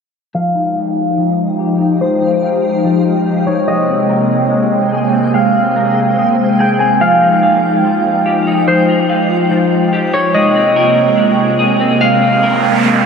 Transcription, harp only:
0.35 F5
2.01 C5
3.47 C#5
3.68 D#5
5.34 F5
6.60 G5
6.79 G#5
7.01 F5
8.67 C5
10.13 C#5
10.34 D#5
12.01 F5

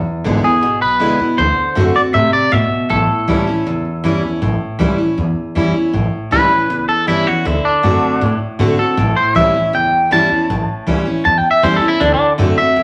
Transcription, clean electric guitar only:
0.44 G#4
0.82 B4
1.38 C5
1.96 D5
2.14 E5
2.33 D5
2.52 E5
2.90 A4
6.32 B4
6.89 A4
7.08 E4
7.27 F#4
7.46 E4
7.65 D4
8.79 A4
9.17 C5
9.36 E5
9.75 G5
10.12 A5
11.25 A5
11.38 G5
11.51 E5
11.63 C5
11.76 A4
11.88 E4
12.00 D4
12.14 D4
12.58 E5

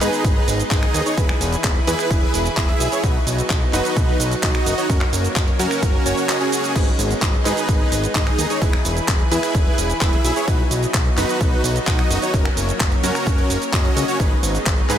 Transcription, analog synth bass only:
0.01 G#2
0.24 G#1
0.48 G#1
0.71 G#1
0.94 D#2
1.18 E1
1.41 E1
1.64 E1
1.87 E2
2.11 E1
2.34 E1
2.57 E1
2.80 B1
3.04 B1
3.27 B1
3.50 B1
3.73 F#1
3.97 B1
4.20 B1
4.43 B1
4.66 F#1
4.90 F#1
5.13 F#1
5.36 F#1
5.59 F#2
5.83 F#1
6.06 F#1
6.76 G#1
6.99 G#1
7.22 G#1
7.45 G#2
7.69 G#1
7.92 G#1
8.15 G#1
8.38 D#2
8.62 E1
8.85 E1
9.08 E1
9.31 E2
9.55 E1
9.78 E1
10.01 E1
10.24 B1
10.48 B1
10.71 B1
10.94 B1
11.17 F#1
11.41 B1
11.64 B1
11.87 B1
12.10 F#1
12.34 F#1
12.57 F#1
12.80 F#1
13.03 F#2
13.27 F#1
13.50 F#1
13.73 F#1
13.97 C#2
14.20 G#1
14.43 G#1
14.66 G#1
14.90 G#2

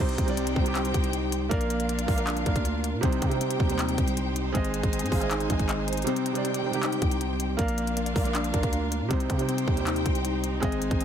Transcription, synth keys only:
0.00 C4
0.37 C4
0.75 D#4
1.51 A#3
1.89 A#3
2.27 D4
3.03 C4
3.41 C4
3.79 D#4
4.54 C4
4.93 C4
5.31 D#4
6.07 C4
6.45 C4
6.83 D#4
7.59 A#3
7.97 A#3
8.34 D4
9.11 C4
9.49 C4
9.87 D#4
10.62 C4
11.01 C4

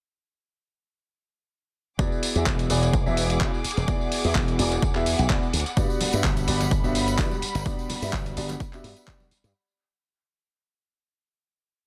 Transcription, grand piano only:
1.98 B3 E4 F#4 G#4 D5
2.35 B3 E4 F#4 G#4 E5
2.69 B3 E4 F#4 G#4 D5
3.06 B3 E4 F#4 G#4 E5
3.40 B3 E4 F#4 G#4 D5
3.87 B3 E4 F#4 G#4 D5
4.24 B3 E4 F#4 G#4 E5
4.58 B3 E4 F#4 G#4 D5
4.95 B3 E4 F#4 G#4 E5
5.29 B3 E4 F#4 G#4 D5
5.76 B3 D4 F#4 G4 D5
6.13 B3 D4 F#4 G4 E5
6.47 B3 D4 F#4 G4 D5
6.83 B3 D4 F#4 G4 E5
7.18 B3 D4 F#4 G4 D5
7.65 B3 D4 F#4 G4 D5
8.02 B3 D4 F#4 G4 E5
8.36 B3 D4 F#4 G4 D5
8.73 B3 D4 F#4 G4 E5
9.08 B3 D4 F#4 G4 D5

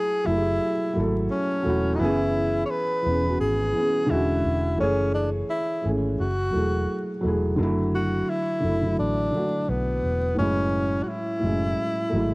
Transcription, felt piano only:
Already playing: F#3 A3 E4 G#5
0.24 F#3 A3
0.28 E4 G4
0.37 G#4
0.93 F#3 A3
0.97 E4 A4
1.63 F#3 A3
1.67 E4 F#4
1.98 E3 B3
2.02 C#4 G#4
3.02 E3 B3
3.07 C#4 G#4
3.23 E3 B3
3.27 C#4 F#4
3.72 E3 B3
3.77 C#4 G#4
4.06 D3 G#3
4.11 C#4 F#4
4.76 E3 A3
4.81 G#4 C#5
5.82 E3 A3
5.86 C#4 G#4
6.50 F#3 A3
6.55 E4 G#4
7.21 F#3 A3
7.25 E4 G#4
7.56 D3 F#3
7.60 A3 E4
8.60 D3 F#3
8.65 A3 E4
8.81 D3 F#3
8.86 A3 E4
9.31 D3 F#3
9.35 A3 F#4
10.35 A2 F#3
10.39 G#3 E4
11.39 A2 F#3
11.44 G#3 C#4
12.10 F#3 A3
12.14 G#3 E4

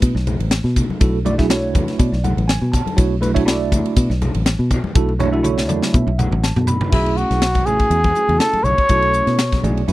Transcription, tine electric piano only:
Already playing: A3 D4 E4 F#4 B4
1.00 A3 D4 E4 F#4 A4
1.25 A3 D4 E4 F#4 D5
1.38 A3 D4 E4 F#4 G#4
1.49 A3 D4 E4 F#4 C#5
1.74 B4
1.99 D5
2.24 F#5
2.48 G#5
2.72 A5
2.96 A3 D4 E4 F#4 C#5
3.21 A3 D4 E4 F#4 B4
3.34 A3 D4 E4 F#4 C#5
3.45 A3 D4 E4 F#4 D5
4.95 A3 D4 E4 F#4 A4
5.19 A3 D4 E4 F#4 C#5
5.32 A3 D4 E4 F#4 A4
5.42 A3 D4 E4 F#4 C#5
5.68 D5
5.93 E5
6.19 F#5
6.44 A5
6.67 B5
6.92 A3 C#4 E4 F#4 G#4
7.65 A3 C#4 E4 F#4 G#4
8.16 A3 C#4 E4 F#4 G#4
8.90 A3 C#4 E4 F#4 A4
9.63 A3 C#4 E4 F#4 G#4 D5
9.87 A3 C#4 E4 F#4 B4 E5

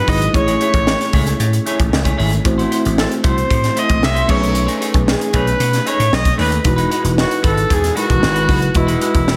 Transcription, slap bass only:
0.08 G#1
0.34 A1
0.74 A1
1.14 C#2
1.39 A2
1.80 A1
1.93 C#2
2.19 G#1
2.45 A1
2.86 A1
3.24 C2
3.50 A2
3.90 A1
4.03 C2
4.29 B1
4.94 B1
5.34 B1
5.60 B2
5.99 A2
6.12 B1
6.39 D#2
6.65 E1
7.04 E1
7.44 G#1
7.70 E2
8.10 E1
8.23 G#1
8.49 F#1
8.75 E1
9.14 E1

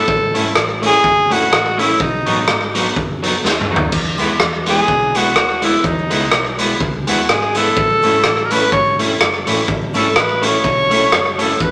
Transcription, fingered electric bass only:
0.08 A1
0.35 G#1
0.56 A1
1.05 F#1
1.52 A1
2.00 B1
2.27 A1
2.49 G#1
2.97 F#1
3.44 D#2
3.93 E2
4.19 D#2
4.41 E2
4.88 B1
5.36 D#2
5.84 E2
6.12 C#2
6.33 B1
6.81 C#2
7.09 D#2
7.29 G#1
7.77 A1
8.04 G#1
8.25 A1
8.72 G#1
9.21 F#1
9.47 A1
9.68 A1
9.95 G#1
10.16 A1
10.65 B1
11.12 F#1
11.61 E2

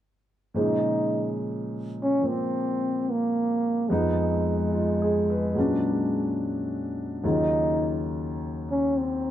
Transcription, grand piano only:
0.54 A#2 C#3 F3 G#3 C5
2.21 F3 A#3 C4
3.90 F2 F3 G#3 B3 D#4
4.72 F4
5.02 G#4
5.30 B4
5.55 A#2 F#3 G#3 C#4
5.60 D4
7.24 D#2 C#3 D#3 F#3 F4

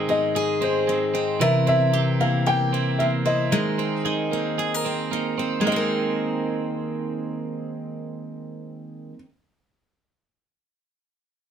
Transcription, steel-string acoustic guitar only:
Already playing: G#2 C4 G#4
0.09 D#4
0.36 G#4
0.62 D#4
0.89 C4
1.15 D#4
1.41 C3 A#4
1.67 E4
1.93 C4
2.21 E4
2.46 A#4
2.74 E4
3.00 C4
3.26 E4
3.52 G#3 A#4
3.79 C4
4.05 D#4
4.33 C4
4.59 G#4
4.74 A#4
4.86 C4
5.13 D#4
5.39 C4
5.61 G#3
5.67 D#4
5.72 C4
5.76 A#4

